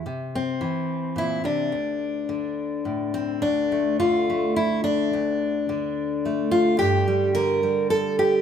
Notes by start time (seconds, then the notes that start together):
0.06 C3
0.35 C4
0.61 E3
1.16 A#2 E4
1.44 C3 D4
1.72 D2
2.29 D3
2.85 A2
3.14 C4
3.42 D2 D4
3.72 A3
3.99 D3 F4
4.30 A3
4.56 E4
4.84 D4
5.13 D2
5.69 D3
6.25 A3
6.51 F4
6.79 G2 G4
7.08 G3
7.35 D3 A#4
7.63 G3
7.90 A4
8.19 G4